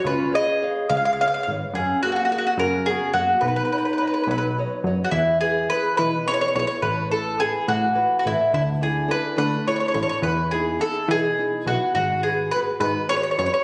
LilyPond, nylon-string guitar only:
\new Staff \with { instrumentName = "Nylon-string guitar" } { \time 6/8 \key b \major \tempo 4. = 70 cis'8 <b' cis'' eis''>8 <b' cis'' eis''>8 gis8 <b' cis'' eis''>8 <b' cis'' eis''>8 | fis8 <fis' gis' ais'>8 <fis' gis' ais'>8 cis8 <fis' gis' ais'>8 <fis' gis' ais'>8 | b8 <b' cis'' dis''>8 <b' cis'' dis''>8 fis8 <b' cis'' dis''>8 <b' cis'' dis''>8 | \key e \major e8 <e' gis' b'>8 <e' gis' b'>8 b,8 <e' gis' b'>8 <e' gis' b'>8 |
a8 <e' a' b'>8 <e' a' b'>8 e8 <e' a' b'>8 <e' a' b'>8 | d8 <d' e' a'>8 <d' e' a'>8 a8 <d' e' a'>8 <d' e' a'>8 | e8 <dis' e' gis'>8 <dis' e' gis'>8 b,8 <dis' e' gis'>8 <dis' e' gis'>8 | gis8 <fis' gis' b'>8 <fis' gis' b'>8 dis8 <fis' gis' b'>8 <fis' gis' b'>8 | }